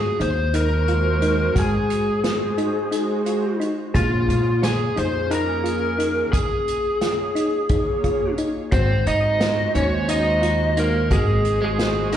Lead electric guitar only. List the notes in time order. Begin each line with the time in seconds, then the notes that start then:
Already playing: G#4
0.21 C5
0.56 A#4
1.58 G#4
3.96 F4
4.64 G#4
4.98 C5
5.31 A#4
6.33 G#4
8.73 C5
9.08 D#5
9.76 C#5
10.10 D#5
10.80 A#4
11.12 G#4
11.65 G#4